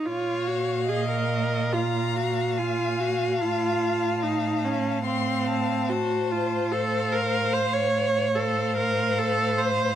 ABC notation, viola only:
X:1
M:4/4
L:1/16
Q:1/4=72
K:Fphr
V:1 name="Viola"
F2 G2 A B3 F2 G2 F2 G2 | F4 E2 D2 C4 G2 F2 | =A2 B2 c d3 A2 B2 A2 c2 |]